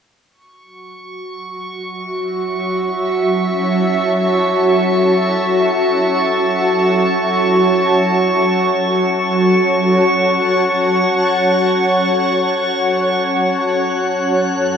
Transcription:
0.31 ambient pad F#4, synth texture C#6
1.31 ambient pad E5
1.51 ambient pad C#5
2.23 ambient pad A5
8.10 ambient pad F#5
13.32 ambient pad F#3
13.36 synth texture F#6
13.82 ambient pad A4

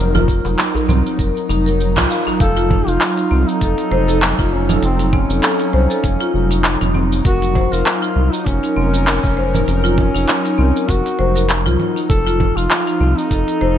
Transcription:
Already playing: analog synth bass F1, analog synth pad F#3 D#4 A#4, marimba A#4, singing bowl C6
0.15 marimba F4, djembe slap, djembe bass, low conga, shaker
0.28 kick, djembe tone, shaker
0.45 analog synth bass F1, marimba D#4, djembe slap, djembe tone, shaker
0.59 clap, shaker
0.75 marimba D#4, djembe bass, shaker
0.89 analog synth bass C2, marimba C4, low conga, shaker
1.06 shaker
1.19 analog synth bass F1, marimba A#4, kick, shaker
1.37 shaker
1.49 analog synth bass F1, marimba D#4, djembe tone, shaker
1.66 marimba A#4, shaker
1.81 shaker
1.96 analog synth bass C2, marimba F4, kick, clap, djembe slap, low conga, shaker
2.10 marimba F5, shaker
2.27 marimba D#4, djembe tone, shaker
2.40 analog synth bass F1, duduk A4, singing bowl F5, kick, open hi-hat, shaker
2.57 marimba F4, open hi-hat, shaker
2.71 kick, low conga
2.87 analog synth bass F1, marimba D#4, duduk F4, shaker
3.01 clap, open hi-hat, shaker
3.17 marimba D#4, open hi-hat, shaker
3.22 analog synth pad A4
3.31 analog synth bass C2, marimba C4
3.48 duduk D#4, shaker
3.61 analog synth bass F1, marimba A4, kick, open hi-hat, shaker
3.78 open hi-hat, shaker
3.91 analog synth bass F1, marimba C5
4.08 marimba A4, open hi-hat, shaker
4.22 clap, open hi-hat, shaker
4.39 analog synth bass F1, marimba F4, kick, open hi-hat, shaker
4.54 duduk C#4
4.69 marimba D#4, low conga, shaker
4.83 analog synth bass F1, duduk C4, open hi-hat, shaker
4.99 marimba D#4, open hi-hat, shaker
5.13 marimba C4, duduk C#4, kick, low conga
5.30 analog synth bass F1, shaker
5.43 marimba A4, clap, open hi-hat, shaker
5.60 open hi-hat, shaker
5.73 analog synth bass C2, marimba C5
5.90 marimba A4, shaker
6.04 analog synth bass F1, kick, open hi-hat, shaker
6.20 marimba F4, open hi-hat, shaker
6.34 analog synth bass F1
6.51 marimba D#4, open hi-hat, shaker
6.64 clap, open hi-hat, shaker
6.81 analog synth bass F1, marimba D#4, open hi-hat, low conga, shaker
6.94 marimba C4, low conga
7.12 shaker
7.25 analog synth bass F1, duduk F#4, marimba A#4, kick, open hi-hat, shaker
7.42 open hi-hat, shaker
7.55 marimba C5, kick, low conga
7.72 analog synth bass F1, duduk F4, marimba A#4, shaker
7.83 analog synth pad A#4, clap, open hi-hat, shaker
8.02 marimba F4, open hi-hat, shaker
8.16 analog synth bass C2
8.32 duduk D#4, marimba D#4, shaker
8.46 analog synth bass F1, duduk C#4, kick, open hi-hat, shaker
8.63 marimba D#4, open hi-hat, shaker
8.76 analog synth bass F1, marimba C4
8.94 open hi-hat, shaker
9.07 marimba A#4, clap, open hi-hat, shaker
9.24 analog synth bass F1, kick, open hi-hat, shaker
9.37 marimba C5
9.54 marimba A#4, low conga, shaker
9.68 analog synth bass F1, duduk C#4, open hi-hat, shaker
9.84 marimba F4, open hi-hat, shaker
9.98 kick, low conga
10.15 analog synth bass F1, marimba D#4, shaker
10.28 clap, open hi-hat, shaker
10.45 marimba D#4, open hi-hat, shaker
10.58 analog synth bass C2, marimba C4
10.77 shaker
10.88 analog synth bass F1, duduk F#4, marimba A#4, kick, open hi-hat, shaker
11.06 open hi-hat, shaker
11.19 analog synth bass F1, marimba C5
11.35 marimba A#4, open hi-hat, shaker
11.50 clap, open hi-hat, shaker
11.66 analog synth bass C2, marimba F4, open hi-hat, low conga, shaker
11.80 low conga
11.96 marimba D#4, shaker
12.10 analog synth bass F1, analog synth pad F3, duduk A4, kick, open hi-hat, shaker
12.27 marimba F4, open hi-hat, shaker
12.40 kick, low conga
12.56 analog synth bass F1, marimba D#4, duduk F4, shaker
12.71 clap, open hi-hat, shaker
12.87 marimba D#4, analog synth pad A4, open hi-hat, shaker
13.01 analog synth bass C2, marimba C4
13.17 duduk D#4, shaker
13.31 analog synth bass F1, marimba A4, kick, open hi-hat, shaker
13.48 open hi-hat, shaker
13.61 analog synth bass F1, marimba C5

